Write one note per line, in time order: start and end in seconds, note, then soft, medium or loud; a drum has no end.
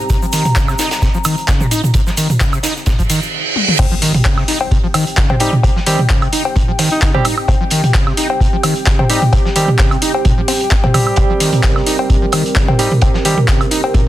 0.00 3.29 C4 medium
0.00 3.29 G4 medium
0.00 3.33 G4 medium
0.00 3.33 C5 medium
0.00 3.29 G5 medium
0.00 3.33 A#5 medium
0.09 0.17 C3 loud
0.09 kick loud
0.09 closed hi-hat medium
0.09 shaker soft
0.22 0.26 F3 medium
0.22 shaker soft
0.33 0.43 D#3 medium
0.33 closed hi-hat medium
0.33 open hi-hat medium
0.33 shaker medium
0.45 closed hi-hat soft
0.45 mid tom medium
0.45 shaker soft
0.56 0.70 C#3 medium
0.56 kick loud
0.56 snare loud
0.56 clap loud
0.56 closed hi-hat medium
0.56 shaker soft
0.68 0.74 C3 medium
0.68 snare soft
0.68 high woodblock medium
0.68 shaker soft
0.79 0.89 D#4 medium
0.79 snare loud
0.79 closed hi-hat medium
0.79 open hi-hat medium
0.79 shaker medium
0.91 snare medium
0.91 closed hi-hat medium
0.91 shaker soft
1.02 1.09 C3 loud
1.02 kick loud
1.02 snare medium
1.02 closed hi-hat medium
1.02 shaker soft
1.14 1.18 F3 medium
1.14 shaker soft
1.24 1.35 D#3 medium
1.24 closed hi-hat medium
1.24 open hi-hat loud
1.24 high woodblock medium
1.24 shaker medium
1.37 closed hi-hat soft
1.37 shaker soft
1.48 1.62 C#3 medium
1.48 kick loud
1.48 snare loud
1.48 clap loud
1.48 closed hi-hat medium
1.48 shaker soft
1.61 1.66 C3 medium
1.61 mid tom medium
1.61 shaker soft
1.71 1.82 D#4 medium
1.71 closed hi-hat medium
1.71 open hi-hat medium
1.71 shaker medium
1.84 mid tom medium
1.84 shaker soft
1.94 2.01 C3 loud
1.94 kick loud
1.94 closed hi-hat medium
1.94 shaker soft
2.07 2.10 F3 medium
2.07 snare soft
2.07 shaker soft
2.17 2.28 D#3 medium
2.17 closed hi-hat medium
2.17 open hi-hat loud
2.17 shaker medium
2.30 mid tom medium
2.30 shaker soft
2.40 2.54 C#3 medium
2.40 kick loud
2.40 snare loud
2.40 clap loud
2.40 closed hi-hat medium
2.40 shaker soft
2.52 2.59 C3 medium
2.52 closed hi-hat soft
2.52 high woodblock medium
2.52 shaker soft
2.63 2.74 D#4 medium
2.63 snare loud
2.63 closed hi-hat medium
2.63 open hi-hat medium
2.63 shaker medium
2.76 snare soft
2.76 shaker soft
2.86 2.93 C3 loud
2.86 kick loud
2.86 snare medium
2.86 closed hi-hat medium
2.86 mid tom medium
2.86 reverse cymbal medium
2.86 shaker medium
2.99 3.03 F3 medium
2.99 kick medium
2.99 closed hi-hat soft
2.99 shaker soft
3.09 3.20 D#3 medium
3.09 closed hi-hat medium
3.09 open hi-hat loud
3.09 shaker medium
3.22 shaker soft
3.56 high tom medium
3.68 mid tom medium
3.79 3.86 C3 loud
3.79 14.08 C4 medium
3.79 14.08 G4 medium
3.79 11.16 G5 loud
3.79 kick loud
3.79 closed hi-hat medium
3.79 crash loud
3.79 cowbell medium
3.79 impact medium
3.91 3.95 F3 medium
4.02 4.12 D#3 medium
4.02 closed hi-hat medium
4.02 open hi-hat loud
4.14 closed hi-hat soft
4.14 mid tom medium
4.25 4.39 C#3 medium
4.25 kick loud
4.25 snare loud
4.25 clap loud
4.25 closed hi-hat medium
4.25 cowbell soft
4.37 4.43 C3 medium
4.37 snare soft
4.37 high woodblock medium
4.48 4.58 D#4 medium
4.48 snare soft
4.48 closed hi-hat medium
4.48 open hi-hat medium
4.61 cowbell medium
4.71 4.78 C3 loud
4.71 kick loud
4.71 closed hi-hat medium
4.84 4.87 F3 medium
4.94 5.05 D#3 medium
4.94 closed hi-hat medium
4.94 open hi-hat loud
4.94 cowbell soft
4.94 high woodblock medium
5.07 closed hi-hat soft
5.17 5.31 C#3 medium
5.17 kick loud
5.17 snare loud
5.17 clap loud
5.17 closed hi-hat medium
5.30 5.36 C3 medium
5.30 mid tom medium
5.30 cowbell medium
5.40 5.53 G3 medium
5.40 5.53 C4 medium
5.40 5.51 D#4 medium
5.40 5.53 G4 loud
5.40 closed hi-hat medium
5.40 open hi-hat medium
5.53 mid tom medium
5.63 5.70 C3 loud
5.63 kick loud
5.63 closed hi-hat medium
5.63 cowbell medium
5.76 5.80 F3 medium
5.76 snare soft
5.86 5.97 D#3 medium
5.86 5.99 G3 loud
5.86 5.99 C4 medium
5.86 5.99 G4 loud
5.86 closed hi-hat medium
5.86 open hi-hat loud
5.99 mid tom medium
6.09 6.24 C#3 medium
6.09 kick loud
6.09 snare loud
6.09 clap loud
6.09 closed hi-hat medium
6.09 cowbell soft
6.22 6.28 C3 medium
6.22 closed hi-hat soft
6.22 high woodblock medium
6.32 6.43 D#4 medium
6.32 closed hi-hat medium
6.32 open hi-hat loud
6.45 cowbell medium
6.56 6.63 C3 loud
6.56 kick loud
6.56 closed hi-hat medium
6.56 mid tom medium
6.68 6.72 F3 medium
6.78 6.89 D#3 medium
6.78 open hi-hat medium
6.78 open hi-hat loud
6.78 cowbell soft
6.91 6.98 D#4 medium
6.91 closed hi-hat soft
7.02 7.16 C#3 medium
7.02 7.10 D#4 medium
7.02 kick loud
7.02 snare loud
7.02 clap loud
7.02 closed hi-hat medium
7.14 7.20 C3 medium
7.14 7.25 G3 loud
7.14 7.25 C4 medium
7.14 7.25 G4 loud
7.14 mid tom medium
7.14 cowbell medium
7.25 7.35 D#4 medium
7.25 closed hi-hat medium
7.25 open hi-hat loud
7.25 high woodblock medium
7.38 high woodblock medium
7.48 7.55 C3 loud
7.48 kick loud
7.48 closed hi-hat medium
7.48 cowbell medium
7.61 7.64 F3 medium
7.70 7.81 D#3 medium
7.70 closed hi-hat medium
7.70 open hi-hat loud
7.84 closed hi-hat soft
7.84 mid tom medium
7.94 8.08 C#3 medium
7.94 kick loud
7.94 snare loud
7.94 clap loud
7.94 closed hi-hat medium
7.94 cowbell soft
8.06 8.13 C3 medium
8.06 snare soft
8.06 high woodblock medium
8.17 8.28 D#4 medium
8.17 snare soft
8.17 closed hi-hat medium
8.17 open hi-hat loud
8.30 cowbell medium
8.40 8.47 C3 loud
8.40 kick loud
8.40 closed hi-hat medium
8.53 8.56 F3 medium
8.63 8.74 D#3 medium
8.63 closed hi-hat medium
8.63 open hi-hat loud
8.63 cowbell soft
8.63 high woodblock medium
8.76 closed hi-hat soft
8.86 9.01 C#3 medium
8.86 kick loud
8.86 snare loud
8.86 clap loud
8.86 closed hi-hat loud
8.99 9.05 C3 medium
8.99 mid tom medium
8.99 cowbell medium
9.10 9.22 G3 medium
9.10 9.22 C4 medium
9.10 9.20 D#4 medium
9.10 9.22 G4 loud
9.10 closed hi-hat medium
9.10 open hi-hat loud
9.22 mid tom medium
9.33 9.40 C3 loud
9.33 kick loud
9.33 closed hi-hat medium
9.33 cowbell medium
9.45 9.49 F3 medium
9.45 snare soft
9.56 9.66 D#3 medium
9.56 9.68 G3 loud
9.56 9.68 C4 medium
9.56 9.68 G4 loud
9.56 closed hi-hat medium
9.56 open hi-hat loud
9.68 mid tom medium
9.79 9.93 C#3 medium
9.79 kick loud
9.79 snare loud
9.79 clap loud
9.79 closed hi-hat medium
9.79 cowbell soft
9.91 9.97 C3 medium
9.91 closed hi-hat soft
9.91 high woodblock medium
10.02 10.12 D#4 medium
10.02 closed hi-hat medium
10.02 open hi-hat loud
10.14 cowbell medium
10.25 10.32 C3 loud
10.25 kick loud
10.25 closed hi-hat medium
10.25 mid tom medium
10.38 10.41 F3 medium
10.48 10.52 C4 medium
10.48 open hi-hat loud
10.48 open hi-hat medium
10.48 cowbell soft
10.60 closed hi-hat soft
10.71 10.75 C4 loud
10.71 kick loud
10.71 snare loud
10.71 clap loud
10.71 closed hi-hat medium
10.84 10.87 A#2 medium
10.84 mid tom loud
10.84 cowbell medium
10.94 10.98 C3 loud
10.94 12.76 G3 loud
10.94 12.76 C4 medium
10.94 12.76 G4 loud
10.94 closed hi-hat medium
10.94 mid tom medium
10.94 open hi-hat medium
10.94 high woodblock medium
11.07 high woodblock medium
11.16 11.24 C3 loud
11.16 14.08 A#4 loud
11.16 kick loud
11.16 closed hi-hat medium
11.16 cowbell medium
11.30 11.33 F3 medium
11.40 11.51 D#3 medium
11.40 closed hi-hat medium
11.40 open hi-hat loud
11.52 closed hi-hat soft
11.52 mid tom medium
11.63 11.77 C#3 medium
11.63 kick loud
11.63 snare loud
11.63 clap loud
11.63 closed hi-hat loud
11.63 cowbell soft
11.76 11.82 C3 medium
11.76 snare soft
11.76 high woodblock medium
11.86 11.97 D#4 medium
11.86 snare soft
11.86 closed hi-hat medium
11.86 open hi-hat loud
11.99 cowbell medium
12.10 12.17 C3 loud
12.10 kick loud
12.10 closed hi-hat medium
12.22 12.26 F3 medium
12.32 12.43 D#3 medium
12.32 closed hi-hat medium
12.32 open hi-hat loud
12.32 cowbell soft
12.32 high woodblock medium
12.46 closed hi-hat soft
12.56 12.70 C#3 medium
12.56 kick loud
12.56 snare loud
12.56 clap loud
12.56 closed hi-hat medium
12.68 12.74 C3 medium
12.68 mid tom loud
12.68 cowbell medium
12.79 12.91 G3 medium
12.79 12.91 C4 medium
12.79 12.89 D#4 medium
12.79 12.91 G4 loud
12.79 closed hi-hat medium
12.79 open hi-hat medium
12.91 mid tom medium
13.01 13.09 C3 loud
13.01 kick loud
13.01 closed hi-hat medium
13.01 cowbell medium
13.14 13.18 F3 medium
13.14 snare soft
13.25 13.35 D#3 medium
13.25 13.38 G3 loud
13.25 13.38 C4 medium
13.25 13.38 G4 loud
13.25 closed hi-hat medium
13.25 open hi-hat loud
13.38 mid tom loud
13.48 13.62 C#3 medium
13.48 kick loud
13.48 snare loud
13.48 clap loud
13.48 closed hi-hat loud
13.48 cowbell soft
13.60 13.66 C3 medium
13.60 closed hi-hat soft
13.60 high woodblock medium
13.71 13.81 D#4 medium
13.71 closed hi-hat medium
13.71 open hi-hat medium
13.84 cowbell medium
13.94 14.01 C3 loud
13.94 kick loud
13.94 closed hi-hat medium
13.94 mid tom loud